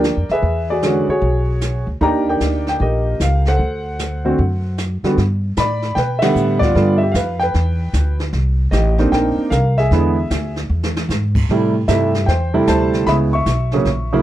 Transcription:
Already playing: D2 A#4 D5 G5
0.03 snare, hi-hat pedal
0.17 F2
0.29 D#2 G#4 B4 E5, snare
0.42 E2, brush sweep, kick
0.70 F#4 G#4 D5
0.82 D3 G#3 C#4 F#4, snare, hi-hat pedal
1.08 F#4 G#4 C#5, muted upright bass stroke
1.22 B1, brush sweep, kick
1.61 snare, hi-hat pedal
1.87 D2
2.01 D#2 A#3 D4 D#4 G4 D5 G5 A#5, brush sweep, kick
2.29 A#4 D5 G5
2.40 D2, snare, hi-hat pedal
2.67 G5, snare
2.80 A#1 G4 A#4 D#5, brush sweep, kick
3.20 C#2 F5, snare, hi-hat pedal
3.45 A4 C5 F#5, snare
3.59 D2, brush sweep, kick
3.99 snare, hi-hat pedal
4.25 D3 A3 C4 F#4
4.39 F#2, brush sweep, kick
4.78 snare, hi-hat pedal
5.03 D3 G3 B3 F#4, muted upright bass stroke, snare
5.17 G2, brush sweep, kick, snare
5.57 A2 D5 B5, kick, snare, hi-hat pedal
5.82 snare
5.95 B2 B4 G5, brush sweep, kick, snare
6.19 D3 G3 B3 G4 E5 F#5, snare, ride
6.36 A2, hi-hat pedal
6.59 D5, kick, snare
6.64 F4
6.75 G2 D3 G3 B3 F4, brush sweep, snare
6.98 E5
7.03 G4
7.12 F2 F5, kick, snare, hi-hat pedal
7.16 B4
7.39 B4 G5, snare
7.54 E2, brush sweep, kick, snare
7.93 D2, kick, snare, hi-hat pedal
8.20 snare
8.33 C2, brush sweep, kick, snare
8.71 A1 G4 D#5, kick, snare, hi-hat pedal
8.98 A#3 C4 D4 D#4, snare
9.12 A#1 A#4 G5, brush sweep, kick, snare
9.38 muted upright bass stroke
9.50 C2 A#4 F5, kick, snare, hi-hat pedal
9.77 G#4 E5, snare
9.91 E2 D3 G#3 B3 E4, brush sweep, kick, snare
10.30 D2, kick, snare, hi-hat pedal
10.56 snare
10.70 E2
10.83 snare
10.97 snare
11.09 G#2, snare, hi-hat pedal
11.35 kick, crash
11.49 A2 C3 G3 A3 E4, brush sweep, kick, snare
11.88 G2 C3 G3 A3 E4 G4 E5, kick, snare, hi-hat pedal
12.14 snare
12.26 E2 C5 G5, brush sweep, kick, snare
12.54 C3 G3 A3 E4
12.67 D2 C5 A5, kick, snare, hi-hat pedal
12.93 snare
13.06 C#2 C#3 G#3 B3 E4 E5 B5, brush sweep, kick, snare
13.33 E5 C#6
13.46 B1, kick, snare, hi-hat pedal
13.71 C#3 F#3 A#3 C#4, snare
13.85 A#1, brush sweep, kick, snare
14.13 C#3 F#3 A#3 E4

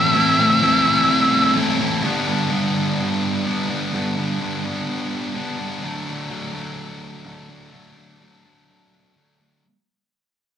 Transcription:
Already playing: A2 E3 A3 C4 E4 E5
0.15 A2 E3 A3 C4 E4
0.39 A3 C4 E4
0.61 E3 A3 C4 E4
0.86 A3 C4 E4
1.56 A2 E3 A3 C4 E4
1.80 A3 C4 E4
2.03 G2 D3 G3 B3 D4
2.27 G3 B3 D4
2.50 G2 D3 G3 B3 D4
2.74 G3 B3 D4
3.45 D3 G3 B3 D4
3.69 G3 B3 D4
3.93 G2 D3 G3 B3 D4
4.17 G3 B3 D4
4.40 G2 D3 G3 B3 D4
4.64 G3 B3 D4
5.34 D3 G3 B3 D4
5.59 G3 B3 D4
5.83 D3 F#3 A3 D4
6.07 F#3 A3 D4
6.30 D3 F#3 A3 D4
6.54 F#3 A3 D4
7.25 D3 F#3 A3 D4
7.49 F#3 A3 D4
7.73 D3 F#3 A3 D4
7.97 F#3 A3 D4
8.20 D3 F#3 A3 D4
8.45 F#3 A3 D4
9.16 D3 F#3 A3 D4
9.40 F#3 A3 D4

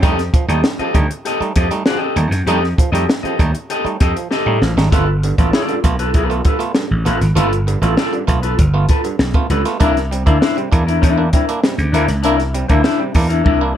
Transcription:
0.02 F2 G3 A3 D#4 G4 A4 D#5, kick, closed hi-hat
0.19 snare, closed hi-hat
0.33 F3, muted clean electric guitar stroke, kick, closed hi-hat
0.48 D#2 G3 A3 D#4 G4 A4 D#5, closed hi-hat
0.64 muted clean electric guitar stroke, snare
0.79 F3 G4 A4 D#5, muted slap bass stroke, closed hi-hat
0.94 D2 G3 A3 D#4, muted clean electric guitar stroke, kick, closed hi-hat
1.10 muted clean electric guitar stroke, closed hi-hat
1.25 G4 A4 D#5, closed hi-hat
1.40 G3 A3 D#4, muted slap bass stroke, muted clean electric guitar stroke, closed hi-hat
1.56 F2 F3 G4 A4 D#5, kick, closed hi-hat
1.71 G3 A3 D#4, muted clean electric guitar stroke, closed hi-hat
1.86 F3 F#4 G#4 D5, snare
1.98 G4 A4 D#5
2.16 D#2 G3 A3 D#4, muted clean electric guitar stroke, closed hi-hat
2.31 F#2 A3 D#4, muted clean electric guitar stroke, snare, closed hi-hat
2.46 F2 G3 A3 D#4 G4 A4 D#5, closed hi-hat
2.64 snare
2.78 F3, muted clean electric guitar stroke, kick, closed hi-hat
2.92 F2 G3 A3 D#4 G4 A4 D#5, closed hi-hat
3.08 A3 D#4, muted clean electric guitar stroke, snare
3.23 F3 G4 A4 D#5, muted slap bass stroke, closed hi-hat
3.39 D#2 G3 A3 D#4, muted clean electric guitar stroke, kick, closed hi-hat
3.54 muted clean electric guitar stroke, closed hi-hat
3.70 G4 A4 D#5, closed hi-hat
3.85 G3 A3 D#4, muted slap bass stroke, muted clean electric guitar stroke, closed hi-hat
4.00 F2 G4 A4 D#5, kick, closed hi-hat
4.16 F3, muted clean electric guitar stroke, closed hi-hat
4.31 G4 A4 D#5, snare
4.46 A2 G3 A3 D#4
4.61 A1 F3, muted clean electric guitar stroke, snare
4.77 G#1 G3 A3 D#4, muted clean electric guitar stroke, snare
4.91 G1 A3 B3 F4 A4 B4, kick, closed hi-hat
5.23 G2 D3, muted clean electric guitar stroke, closed hi-hat
5.38 A1 A3 B3 F4 A4 D5, kick, closed hi-hat
5.53 F4 A4 D5, snare
5.69 G2 D3, closed hi-hat
5.84 B1 A3 B3 F4, muted clean electric guitar stroke, kick, closed hi-hat
5.99 F4 A4 B4, closed hi-hat
6.14 B1 F4 A4 B4, kick, closed hi-hat
6.30 A3 B3 F4, muted clean electric guitar stroke, closed hi-hat
6.44 G2 D3 F4 A4 B4, kick, closed hi-hat
6.59 A3 B3 F4, muted clean electric guitar stroke, closed hi-hat
6.75 G2 D3, muted clean electric guitar stroke, snare
6.91 A1
7.05 A1 A3 B3 F4 A4 B4, closed hi-hat
7.21 G#1 B3 F4, muted clean electric guitar stroke, snare, closed hi-hat
7.35 G1 A3 B3 F4 A4 B4, closed hi-hat
7.53 closed hi-hat
7.67 G2 D3, muted clean electric guitar stroke, closed hi-hat
7.81 A1 A3 B3 F4 A4 D5, closed hi-hat
7.97 B3 F4 A4 D5, snare
8.13 G2 D3, closed hi-hat
8.27 B1 A3 B3 F4, muted clean electric guitar stroke, kick, closed hi-hat
8.43 F4 A4 B4, closed hi-hat
8.58 G1, muted clean electric guitar stroke, kick, closed hi-hat
8.74 A3 B3 F4
8.89 F4 A4 B4, kick, closed hi-hat
9.04 G2 D3, muted clean electric guitar stroke, closed hi-hat
9.19 B1, muted clean electric guitar stroke, snare
9.34 A3 B3 F4, kick, closed hi-hat
9.50 C#2 G2 D3 F4 A4 B4, closed hi-hat
9.65 A3 B3 F4, muted clean electric guitar stroke, snare, closed hi-hat
9.80 C2 A#3 D4 E4 A#4, kick, closed hi-hat
9.97 snare, closed hi-hat
10.11 C3 G3, muted clean electric guitar stroke, closed hi-hat
10.26 D2 A#3 D4 E4 C5, kick, closed hi-hat
10.41 D4 E4 C5, snare
10.57 C3 G3, closed hi-hat
10.71 E2 A#3 D4 E4, muted clean electric guitar stroke, kick, closed hi-hat
10.87 D4 E4 A#4, closed hi-hat
11.01 E2 D4 E4 A#4, kick, closed hi-hat
11.17 A#3 D4 E4, muted clean electric guitar stroke
11.33 C3 G3 D4 E4 A#4, kick, closed hi-hat
11.47 A#3 D4 E4, muted clean electric guitar stroke, closed hi-hat
11.63 C3 G3, muted clean electric guitar stroke, snare
11.78 D2, closed hi-hat
11.92 D2 A#3 D4 E4 A#4, closed hi-hat
12.08 C#2, muted clean electric guitar stroke, snare, closed hi-hat
12.23 C2 A#3 D4 E4 A#4, closed hi-hat
12.40 snare, closed hi-hat
12.53 C3 G3, muted clean electric guitar stroke, closed hi-hat
12.68 D2 A#3 D4 E4 C5, kick, closed hi-hat
12.83 D4 E4 C5, snare
13.00 C3 G3
13.13 E2 A#3 D4 E4, muted clean electric guitar stroke, kick, open hi-hat
13.29 D4 E4 A#4, closed hi-hat
13.44 C2 D4 E4 A#4, kick
13.60 A#3 D4 E4, muted clean electric guitar stroke

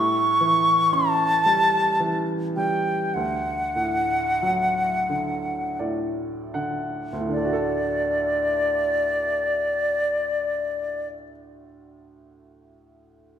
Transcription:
Already playing: A2 C#6
0.41 E3
0.92 C#4 A5
1.46 G3
2.00 E3
2.56 G3 G5
3.14 D2 F#5
3.76 A2
4.42 F#3
5.09 D3
5.79 A2 D5
6.54 D3 F#5
7.13 D2
7.20 A2
7.29 D3 D5
7.37 A3
7.45 F#4
7.53 A4

